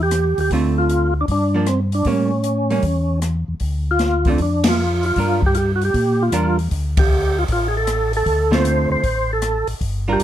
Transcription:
Already playing: tonewheel organ E2
0.03 tonewheel organ G4
0.11 cross-stick, closed hi-hat
0.38 tonewheel organ D#2 G4, open hi-hat
0.50 tonewheel organ D2, hollow-body jazz guitar D3 A3 C4 F4, kick, open hi-hat
0.78 tonewheel organ F4
0.89 closed hi-hat
1.21 tonewheel organ D4
1.28 tonewheel organ G2 D4, kick, open hi-hat
1.54 hollow-body jazz guitar F3 A#3 D4
1.66 tonewheel organ C4, cross-stick, closed hi-hat
1.92 tonewheel organ D4, open hi-hat
2.05 tonewheel organ A2 C#4, hollow-body jazz guitar G3 A#3 C#4, kick, open hi-hat
2.44 closed hi-hat
2.70 hollow-body jazz guitar G3 A#3 C#4, open hi-hat
2.82 tonewheel organ E2, kick, open hi-hat
3.22 cross-stick, closed hi-hat
3.48 tonewheel organ E2
3.60 tonewheel organ D2, kick, open hi-hat
3.91 tonewheel organ F4
3.99 snare, closed hi-hat
4.25 hollow-body jazz guitar D3 A3 C4 F4, kick, open hi-hat
4.30 tonewheel organ D4
4.38 tonewheel organ F2, kick, open hi-hat
4.42 tonewheel organ D4
4.64 snare, ride
4.69 tonewheel organ F4
5.03 tonewheel organ F4, open hi-hat
5.16 tonewheel organ G2, hollow-body jazz guitar G3 D4 F4 A#4, kick, open hi-hat
5.42 tonewheel organ G4, kick
5.55 tonewheel organ F4 G4, closed hi-hat
5.76 tonewheel organ F#4
5.81 tonewheel organ G4, open hi-hat
5.94 tonewheel organ A#2, kick, open hi-hat
6.22 tonewheel organ F4
6.32 tonewheel organ E2, hollow-body jazz guitar G3 D4 F4 A#4, cross-stick, closed hi-hat
6.59 open hi-hat
6.71 tonewheel organ D2, kick, open hi-hat
6.97 tonewheel organ G4, kick, ride
7.39 tonewheel organ F4
7.48 tonewheel organ A1, kick, open hi-hat
7.52 tonewheel organ F4
7.68 tonewheel organ G#4
7.77 tonewheel organ A4
7.87 cross-stick, closed hi-hat
8.13 tonewheel organ A4, open hi-hat
8.26 tonewheel organ D2, kick, open hi-hat
8.51 hollow-body jazz guitar D3 A3 C4 F4, tonewheel organ C5, snare
8.65 closed hi-hat
8.90 tonewheel organ D2 C5
9.03 tonewheel organ A1, kick, open hi-hat
9.33 tonewheel organ A4
9.42 cross-stick, closed hi-hat
9.67 tonewheel organ A1, open hi-hat
9.81 tonewheel organ G1, kick, open hi-hat
10.08 hollow-body jazz guitar G3 D4 F4 A#4
10.13 tonewheel organ G4
10.20 tonewheel organ F1, closed hi-hat

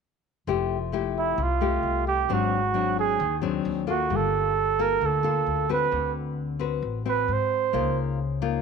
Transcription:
0.47 upright bass F1, nylon-string guitar F3 A3 E4 G4
0.92 nylon-string guitar A3 E4 G4
1.19 flugelhorn E4
1.38 upright bass C2, nylon-string guitar C3
1.42 flugelhorn F4
1.61 nylon-string guitar A3 G4
1.83 upright bass C2
2.08 flugelhorn G4
2.28 upright bass G#1, nylon-string guitar G#2 F#3 C4 D4
2.33 flugelhorn F#4
2.74 nylon-string guitar F#3 C4 D4
2.99 flugelhorn G#4
3.20 upright bass D#2, nylon-string guitar D#3
3.42 nylon-string guitar F#3 C4 D4
3.65 upright bass D#2
3.87 nylon-string guitar A#3 F4 A4, flugelhorn F#4
4.10 upright bass G1, nylon-string guitar G3
4.16 flugelhorn A4
4.79 nylon-string guitar A#3 F4 A4, flugelhorn A#4
5.01 upright bass D2, nylon-string guitar D3
5.06 flugelhorn A4
5.23 nylon-string guitar A#3 F4 A4
5.46 upright bass D2
5.69 nylon-string guitar C4 F#4 B4, flugelhorn B4
5.91 upright bass D2, nylon-string guitar D3
6.59 nylon-string guitar C4 F#4 B4
6.82 upright bass A1
7.05 nylon-string guitar C4 F#4, flugelhorn B4
7.28 upright bass G#2
7.33 flugelhorn C5
7.73 upright bass C#2, nylon-string guitar C#3 A#3 D#4 F4
8.42 nylon-string guitar A#3 D#4 F4

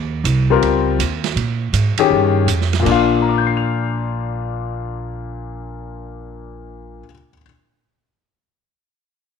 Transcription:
Already playing: upright bass D#2
0.24 upright bass C2, hi-hat pedal, ride
0.50 grand piano G3 C4 F4 A#4
0.62 upright bass C#2, ride
0.99 upright bass D#2, hi-hat pedal, ride
1.24 snare, ride
1.36 upright bass A#2, ride
1.73 upright bass G#2, hi-hat pedal, ride
1.97 grand piano D#3 C#4 G4 G#4, muted upright bass stroke, ride
2.10 upright bass G2
2.47 upright bass F2, hi-hat pedal, ride
2.61 snare
2.73 snare, ride
2.79 grand piano A#2 A#3
2.85 upright bass A#1, grand piano D4 F4, kick, crash
2.92 grand piano F5
3.22 grand piano A#5
3.29 grand piano D6
3.38 grand piano G6
3.47 grand piano C7
3.57 grand piano F7

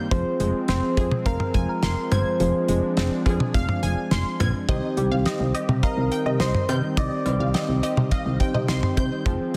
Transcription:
0.11 fm bass F1, synth pluck F3, analog synth pad F3 G#3 C4, tine electric piano C4 F4 G#4 C5, soft synth lead C5, kick, closed hi-hat
0.40 fm bass F1, synth pluck G#3, closed hi-hat
0.68 fm bass F1, synth pluck C4, soft synth lead C5, snare, closed hi-hat
0.97 fm bass F2, synth pluck G#4, kick, closed hi-hat
1.11 mid tom
1.26 fm bass F1, soft synth lead A#4, synth pluck F5, kick, closed hi-hat
1.40 mid tom
1.54 fm bass F1, synth pluck G#5, kick, closed hi-hat
1.69 soft synth lead A#4
1.83 fm bass F1, synth pluck C6, snare, closed hi-hat
2.12 fm bass G1, soft synth lead C5, synth pluck G#6, closed hi-hat, mid tom, cowbell
2.40 fm bass F1, synth pluck F3, tine electric piano C4 F4 G#4 C5, analog synth pad D4, closed hi-hat
2.68 fm bass F1, synth pluck G#3, closed hi-hat
2.97 fm bass F1, synth pluck C4, snare, closed hi-hat
3.26 fm bass F2, synth pluck G#4, kick, closed hi-hat, cowbell
3.40 mid tom
3.54 fm bass F1, synth pluck F5, kick, closed hi-hat
3.69 mid tom
3.83 fm bass F1, synth pluck G#5, closed hi-hat
4.11 fm bass F1, synth pluck C6, snare, closed hi-hat
4.40 fm bass A#1, synth pluck G#6, closed hi-hat, mid tom, cowbell
4.69 fm bass C2, synth pluck D#3 D#5, analog synth pad D#3 G3 C4, tine electric piano C4 D#4 G4 C5, kick, closed hi-hat
4.97 fm bass C2, synth pluck G3, soft synth lead G4, closed hi-hat
5.12 fm bass C2, synth pluck F5
5.26 synth pluck C4 D#5, snare, closed hi-hat
5.40 fm bass C2
5.54 synth pluck G4 D#5, closed hi-hat
5.69 fm bass C3, mid tom
5.83 soft synth lead A#4, synth pluck D#5 F5, kick, closed hi-hat
5.97 fm bass C2
6.12 synth pluck G5, closed hi-hat
6.26 fm bass C3, synth pluck D#5
6.40 fm bass C2, soft synth lead C5, synth pluck D#5 C6, snare, closed hi-hat
6.55 mid tom
6.69 fm bass C3, synth pluck G6, closed hi-hat, cowbell
6.97 fm bass C2, synth pluck D#3 D#5, tine electric piano C4 D#4 G4 C5, soft synth lead D5, kick, closed hi-hat
7.26 fm bass C2, synth pluck G3, closed hi-hat, cowbell
7.40 fm bass C2, synth pluck F5
7.54 synth pluck C4 D#5, snare, closed hi-hat
7.69 fm bass C2
7.83 synth pluck G4 D#5, closed hi-hat
7.97 fm bass C3, mid tom
8.11 synth pluck D#5 F5, kick, closed hi-hat
8.26 fm bass C2
8.40 tine electric piano C4 D#4 G4 C5, synth pluck G5, kick, closed hi-hat
8.54 fm bass C3, synth pluck D#5, mid tom
8.68 fm bass C2, synth pluck C6, snare, closed hi-hat
8.83 mid tom
8.97 fm bass C3, synth pluck C5 G6, kick, closed hi-hat
9.26 fm bass F1, synth pluck F3, analog synth pad F3 G#3 C4, tine electric piano C4 F4 G#4 C5, kick, closed hi-hat

